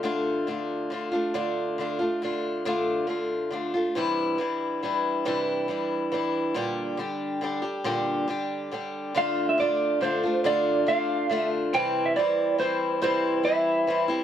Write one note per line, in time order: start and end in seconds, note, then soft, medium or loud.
0.03 0.47 D3 medium
0.03 0.47 A3 medium
0.03 0.48 D4 medium
0.03 0.48 F4 medium
0.47 0.90 D3 medium
0.47 0.90 A3 medium
0.47 0.92 D4 medium
0.47 0.92 F4 medium
0.90 1.12 D3 medium
0.90 1.13 A3 medium
0.90 1.12 D4 medium
0.90 1.10 F4 medium
1.12 1.33 A3 soft
1.12 1.34 D4 soft
1.12 1.34 F4 medium
1.34 1.78 D3 medium
1.34 1.78 A3 medium
1.34 1.80 D4 medium
1.34 1.79 F4 medium
1.78 2.00 D3 medium
1.78 2.00 A3 medium
1.78 1.99 D4 medium
1.78 1.98 F4 medium
1.99 2.22 A3 soft
1.99 2.22 D4 soft
1.99 2.21 F4 medium
2.22 2.64 D3 medium
2.22 2.65 A3 medium
2.22 2.66 D4 medium
2.22 2.66 F4 medium
2.65 3.06 D3 medium
2.65 3.06 A3 medium
2.65 3.09 D4 medium
2.65 3.09 F4 medium
3.07 3.49 D3 medium
3.07 3.51 A3 medium
3.07 3.52 D4 medium
3.07 3.52 F4 medium
3.51 3.73 D3 medium
3.51 3.73 A3 medium
3.51 3.74 D4 medium
3.51 3.73 F4 medium
3.74 3.96 A3 soft
3.74 3.96 D4 soft
3.74 3.95 F4 medium
3.95 4.39 C3 medium
3.95 4.37 E3 medium
3.95 4.39 G3 medium
3.95 4.40 D4 medium
3.95 4.40 E4 medium
4.38 4.81 E3 medium
4.38 4.83 G3 medium
4.38 4.84 D4 medium
4.38 4.83 E4 medium
4.83 5.25 E3 medium
4.83 5.26 G3 medium
4.83 5.27 D4 medium
4.83 5.26 E4 medium
5.25 5.69 C3 medium
5.25 5.67 E3 medium
5.25 5.69 G3 medium
5.25 5.70 D4 medium
5.25 5.70 E4 medium
5.68 6.10 E3 medium
5.68 6.12 G3 medium
5.68 6.13 D4 medium
5.68 6.13 E4 medium
6.12 6.55 E3 medium
6.12 6.55 G3 medium
6.12 6.56 D4 medium
6.12 6.57 E4 medium
6.54 6.98 A#2 medium
6.54 6.96 D3 medium
6.54 6.98 G3 medium
6.54 6.99 D4 medium
6.54 7.00 G4 medium
6.97 7.40 D3 medium
6.97 7.41 G3 medium
6.97 7.43 D4 medium
6.97 7.43 G4 medium
7.41 7.63 D3 medium
7.41 7.64 G3 medium
7.41 7.62 D4 medium
7.41 7.61 G4 medium
7.62 7.84 G3 soft
7.62 7.85 D4 soft
7.62 7.84 G4 medium
7.84 8.28 A#2 medium
7.84 8.26 D3 medium
7.84 8.28 G3 medium
7.84 8.29 D4 medium
7.84 8.29 G4 medium
8.28 8.70 D3 medium
8.28 8.71 G3 medium
8.28 8.72 D4 medium
8.28 8.73 G4 medium
8.72 9.13 D3 medium
8.72 9.15 G3 medium
8.72 9.15 D4 medium
8.72 9.16 G4 medium
9.15 9.57 D3 medium
9.15 9.58 A3 medium
9.15 9.59 D4 medium
9.15 9.59 F4 medium
9.15 9.49 F5 loud
9.49 9.58 E5 medium
9.58 9.99 D3 medium
9.58 10.01 A3 medium
9.58 10.02 D4 medium
9.58 10.03 F4 medium
9.58 9.99 D5 loud
10.01 10.22 D3 medium
10.01 10.23 A3 medium
10.01 10.24 D4 medium
10.01 10.22 F4 medium
10.01 10.46 C5 medium
10.23 10.44 A3 soft
10.23 10.44 D4 soft
10.23 10.45 F4 medium
10.44 10.85 D3 medium
10.44 10.86 A3 medium
10.44 10.87 D4 medium
10.44 10.88 F4 medium
10.44 10.90 D5 medium
10.87 11.28 D3 medium
10.87 11.29 A3 medium
10.87 11.31 D4 medium
10.87 11.31 F4 medium
10.87 11.30 F5 loud
11.30 11.73 D3 medium
11.30 11.73 A3 medium
11.30 11.74 D4 medium
11.30 11.74 F4 medium
11.30 11.48 E5 loud
11.73 12.16 C3 medium
11.73 12.15 E3 medium
11.73 12.16 G3 medium
11.73 12.17 C4 medium
11.73 12.17 E4 medium
11.73 12.07 G5 loud
12.06 12.16 E5 medium
12.16 12.57 E3 medium
12.16 12.58 G3 medium
12.16 12.59 C4 medium
12.16 12.61 E4 medium
12.16 12.59 D5 loud
12.58 13.01 E3 medium
12.58 13.02 G3 medium
12.58 13.02 C4 medium
12.58 13.03 E4 medium
12.58 13.01 C5 loud
13.02 13.44 C3 medium
13.02 13.42 E3 medium
13.02 13.44 G3 medium
13.02 13.44 C4 medium
13.02 13.46 E4 medium
13.02 13.46 C5 medium
13.44 13.86 E3 medium
13.44 13.87 G3 medium
13.44 13.88 C4 medium
13.44 13.88 E4 medium
13.44 14.05 E5 loud
13.87 14.09 E3 medium
13.87 14.09 G3 medium
13.87 14.08 C4 medium
13.87 14.07 E4 medium
14.08 14.24 G3 medium
14.08 14.24 C4 medium
14.08 14.24 E4 medium